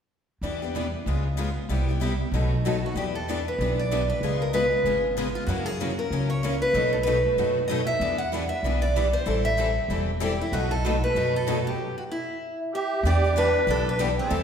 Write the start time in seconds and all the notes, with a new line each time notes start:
0.41 E2 E3 G3 B3 D4 E4 G4 B4
0.62 B3 D4 G4
0.75 E3 G3 B3 D4 E4 G4 B4
1.06 C#2 C#3 G#3 B3 F4 G#4
1.38 C#3 G#3 B3 F4 G#4
1.69 C2 C3 G3 B3 E4 G4
1.89 B3 E4 G4
2.02 C3 G3 B3 E4 G4
2.31 B1 B2 F#3 A3 D#4 F#4 B4
2.65 B2 F#3 A3 D#4 F#4 A4 B4
2.86 F#4
2.95 E2 E3 G3 B3 D4 E4 G4 B4
3.15 A4
3.28 E3 G3 B3 D4 E4 G4 B4
3.48 B4
3.58 B1 E3 G3 B3 D4 E4 G4 B4
3.79 D5
3.91 E3 G3 B3 D4 E4 G4 B4
4.09 B4
4.21 C#2 C#3 G#3 B3 F4 G#4
4.42 A#4
4.53 C#3 G#3 B3 F4 G#4 B4
4.84 G#1 C#3 G#3 B3 F4 G#4
5.18 C#3 G#3 B3 F4 G#4
5.35 F4
5.46 F#2 C#3 E3 F#3 A#3 C#4 E4 F#4 A#4
5.66 G#4
5.80 C#3 E3 F#3 A#3 C#4 E4 F#4 A#4
5.99 A#4
6.10 C#2 C#3 E3 F#3 A#3 C#4 E4 F#4 A#4
6.30 C#5
6.43 C#3 E3 F#3 A#3 C#4 E4 F#4 A#4
6.62 B4
6.73 B1 B2 F#3 A3 D#4 F#4 B4
6.93 A4
7.03 B2 F#3 F#4 B4
7.07 A3 D#4 B4
7.37 F#2 B2 F#3 A3 D#4 F#4 B4
7.68 B2 F#3 A3 D#4 F#4 B4 D#5
7.87 E5
8.00 E2 E3 G3 B3 D4 E4 G4 B4
8.18 F#5
8.32 E3 G3 B3 D4 E4 G4 B4
8.49 E5
8.63 B1 E3 G3 B3 D4 E4 G4 B4
8.82 D5
8.96 E3 G3 B3 D4 E4 G4 B4
9.13 C5
9.26 A1 E3 G3 C4 E4 A4
9.45 E5
9.59 E3 G3 C4 E4 A4
9.88 E1 E3 G3 C4 E4 A4
10.21 E3 G3 C4 E4 G4 A4
10.41 E4
10.52 B1 B2 F#3 A3 D#4 F#4 B4
10.71 A4
10.85 B2 F#3 A3 D#4 F#4 B4
11.04 B4
11.15 F#2 B2 F#3 A3 D#4 F#4 B4
11.36 A4
11.47 B2 F#3 A3 D#4 F#4 B4
11.67 G4
11.98 F#4
12.12 E4
12.73 G4 E5
13.03 E2 E3 G3 B3 D4 E4 G4 B4 D5
13.24 B3 D4 G4
13.36 E3 G3 B3 D4 E4 G4 B4
13.67 B1 E3 G3 B3 D4 E4 G4 A4 B4
13.87 D4 B4
13.99 E3 G3 B3 D4 E4 G4 B4
14.18 C4 A4
14.30 E2 E3 G3 C4 E4 A4